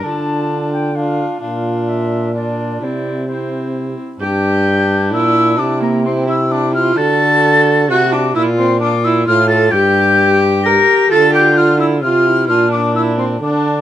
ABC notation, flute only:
X:1
M:3/4
L:1/8
Q:1/4=130
K:Cmix
V:1 name="Flute"
a3 g f2 | f2 e2 d2 | d2 c3 z | g'4 e'2 |
d' b c' e' d' f' | a'4 ^f' d' | e' c' d' e' f' a' | g'4 b'2 |
a' g' f' e' f'2 | f' d' e' c' d'2 |]